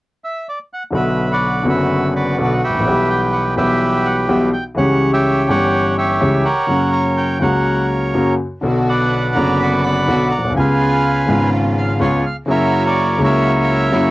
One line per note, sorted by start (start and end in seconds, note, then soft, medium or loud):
0.25 0.48 E5 medium
0.49 0.59 D5 medium
0.74 0.83 F#5 medium
0.91 1.62 B1 medium
0.91 1.62 B2 medium
0.91 1.61 D3 medium
0.91 1.61 F#3 medium
0.91 1.62 B3 medium
0.91 1.30 B4 medium
0.95 1.63 F#4 medium
0.95 1.32 E5 medium
1.31 2.14 F#4 medium
1.31 1.67 B4 soft
1.31 1.65 D5 medium
1.63 2.34 F#1 medium
1.63 2.34 F#2 medium
1.63 2.33 D3 medium
1.63 2.34 F#3 medium
1.63 2.34 B3 medium
1.68 2.35 F#4 medium
1.68 2.14 B4 medium
1.68 2.12 E5 medium
2.15 2.82 F#4 medium
2.15 2.62 B4 soft
2.15 2.53 D5 medium
2.38 2.58 B1 medium
2.38 2.58 B2 medium
2.38 2.58 D3 medium
2.38 2.58 F#3 medium
2.38 2.58 B3 medium
2.38 2.58 F#4 medium
2.53 2.61 F#5 medium
2.64 3.55 G4 medium
2.64 3.55 B4 medium
2.64 3.07 E5 medium
2.69 2.74 G#1 soft
2.74 2.80 A1 medium
2.80 2.86 A#1 medium
2.85 3.55 B1 medium
2.85 3.54 B2 medium
2.85 3.54 E3 medium
2.85 3.54 G3 soft
2.85 3.55 B3 medium
2.89 3.56 G4 medium
3.10 3.21 G5 medium
3.32 3.43 F#5 medium
3.56 4.26 B1 medium
3.56 4.26 B2 medium
3.56 4.25 E3 medium
3.56 4.26 G3 medium
3.56 4.27 B3 medium
3.56 4.49 G4 medium
3.56 4.27 G4 medium
3.56 4.49 B4 medium
3.56 4.07 E5 medium
4.05 4.16 F#5 medium
4.28 4.49 B1 medium
4.28 4.49 B2 medium
4.28 4.49 E3 medium
4.28 4.49 G3 medium
4.28 4.49 B3 medium
4.28 4.49 G4 medium
4.28 4.41 E5 medium
4.53 4.64 G5 medium
4.75 5.46 C#2 medium
4.75 5.46 C#3 medium
4.75 5.44 E3 medium
4.75 5.45 G3 medium
4.75 5.46 C#4 medium
4.75 5.12 C#5 medium
4.75 5.11 F#5 medium
4.79 5.47 G4 medium
5.13 5.97 G4 medium
5.13 5.49 C#5 medium
5.13 5.47 E5 medium
5.47 6.18 G1 medium
5.47 6.18 G2 medium
5.47 6.17 E3 medium
5.47 6.17 G3 medium
5.47 6.18 C#4 medium
5.47 6.19 G4 medium
5.47 5.97 C#5 medium
5.47 5.95 F#5 medium
5.98 6.66 G4 medium
5.98 6.44 C#5 medium
5.98 6.47 E5 medium
6.21 6.42 C#2 medium
6.21 6.42 C#3 medium
6.21 6.41 E3 medium
6.21 6.41 G3 medium
6.21 6.42 C#4 medium
6.21 6.42 G4 medium
6.45 7.38 A#4 medium
6.45 7.38 C#5 medium
6.45 6.90 F#5 medium
6.67 7.38 F#2 medium
6.67 7.37 C#3 medium
6.67 7.38 F#3 medium
6.67 7.38 A#3 soft
6.71 7.39 F#4 medium
6.93 7.04 A#5 medium
7.17 7.42 G5 medium
7.40 8.11 C#2 medium
7.40 8.11 C#3 medium
7.40 8.10 F#3 medium
7.40 8.11 A#3 medium
7.40 8.12 F#4 medium
7.40 8.35 A#4 medium
7.40 8.35 C#5 medium
7.40 7.87 F#5 medium
8.14 8.35 F#2 medium
8.14 8.35 C#3 medium
8.14 8.35 F#3 medium
8.14 8.35 A#3 medium
8.14 8.35 F#4 medium
8.61 9.32 B1 medium
8.61 9.32 B2 medium
8.61 9.31 D3 medium
8.61 9.31 F#3 medium
8.61 9.31 B3 medium
8.61 9.32 B3 soft
8.61 9.32 D4 medium
8.61 9.32 F#4 medium
8.65 9.33 F#4 medium
8.89 9.81 B4 medium
8.89 9.61 D5 medium
8.89 9.38 F#5 medium
9.35 10.05 F#1 medium
9.35 10.05 F#2 medium
9.35 10.04 D3 medium
9.35 10.04 F#3 medium
9.35 10.04 B3 medium
9.35 10.05 B3 medium
9.35 10.04 D4 medium
9.35 10.05 F#4 medium
9.35 10.06 F#4 medium
9.35 9.60 A#5 medium
9.60 9.84 D5 medium
9.60 9.85 F#5 medium
9.60 9.71 B5 medium
9.84 10.53 D5 medium
9.84 10.53 F#5 medium
9.84 10.28 B5 medium
10.08 10.28 B1 medium
10.08 10.28 B2 medium
10.08 10.28 D3 medium
10.08 10.28 F#3 medium
10.08 10.28 B3 medium
10.08 10.28 D4 medium
10.08 10.28 F#4 medium
10.31 10.42 A#5 medium
10.38 10.44 A#1 soft
10.45 10.50 B1 medium
10.50 10.56 C2 medium
10.55 11.25 C#2 medium
10.55 11.25 C#3 medium
10.55 11.24 G#3 medium
10.55 11.25 B3 medium
10.55 11.25 C#4 medium
10.55 11.25 F4 medium
10.55 11.26 F4 medium
10.55 11.48 G#5 medium
10.59 11.50 B4 medium
10.59 11.50 F5 medium
11.27 11.97 G#1 medium
11.27 11.97 G#2 medium
11.27 11.96 C#3 medium
11.27 11.97 G#3 medium
11.27 11.97 B3 medium
11.27 11.97 C#4 medium
11.27 11.97 F4 medium
11.27 11.98 F4 medium
11.77 11.99 F5 medium
11.99 12.20 C#2 medium
11.99 12.20 C#3 medium
11.99 12.20 G#3 medium
11.99 12.20 B3 medium
11.99 12.21 C#4 medium
11.99 12.20 F4 medium
11.99 12.21 F4 medium
11.99 12.25 C#5 medium
12.26 12.36 F5 medium
12.46 13.17 F#2 medium
12.46 13.15 C#3 medium
12.46 13.17 F#3 medium
12.46 13.16 A#3 medium
12.46 13.17 A#3 medium
12.46 13.16 E4 medium
12.46 13.17 F#4 medium
12.46 13.22 C#5 medium
12.50 13.18 E4 medium
12.50 12.84 A#4 medium
12.50 12.83 E5 medium
12.86 13.23 A#4 medium
12.86 13.20 D5 medium
13.18 13.89 C#2 medium
13.18 13.89 C#3 medium
13.18 13.88 F#3 medium
13.18 13.89 A#3 medium
13.18 13.89 E4 medium
13.18 13.90 E4 medium
13.18 13.89 F#4 medium
13.24 14.11 A#4 medium
13.24 14.11 C#5 medium
13.24 14.11 E5 medium
13.92 14.11 F#2 medium
13.92 14.11 C#3 medium
13.92 14.11 F#3 medium
13.92 14.11 A#3 medium
13.92 14.11 E4 medium
13.92 14.11 F#4 medium